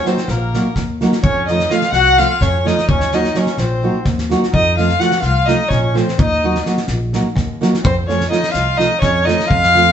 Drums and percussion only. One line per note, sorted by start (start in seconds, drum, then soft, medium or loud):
0.06 snare soft
0.17 snare soft
0.28 snare soft
0.54 snare soft
0.76 kick medium
0.76 snare soft
1.01 snare soft
1.12 snare soft
1.24 kick medium
1.48 snare soft
1.59 snare soft
1.70 snare soft
1.81 snare soft
1.92 snare soft
2.19 snare soft
2.41 kick medium
2.41 snare soft
2.67 snare soft
2.78 snare soft
2.89 kick medium
3.00 snare soft
3.12 snare soft
3.24 snare soft
3.35 snare soft
3.46 snare soft
3.57 snare soft
4.05 kick medium
4.05 snare soft
4.18 snare soft
4.31 snare soft
4.43 snare soft
4.54 kick medium
4.78 snare soft
4.89 snare soft
5.00 snare soft
5.11 snare soft
5.22 snare soft
5.48 snare soft
5.70 kick medium
5.70 snare soft
5.96 snare soft
6.08 snare soft
6.19 kick medium
6.55 snare soft
6.66 snare soft
6.77 snare soft
6.87 snare soft
7.13 snare soft
7.36 kick medium
7.36 snare soft
7.62 snare soft
7.74 snare soft
7.85 kick loud
8.09 snare soft
8.20 snare soft
8.32 snare soft
8.43 snare soft
8.54 snare soft
8.80 snare soft
9.02 kick medium
9.02 snare soft
9.28 snare soft
9.40 snare soft
9.51 kick medium
9.63 snare soft
9.75 snare soft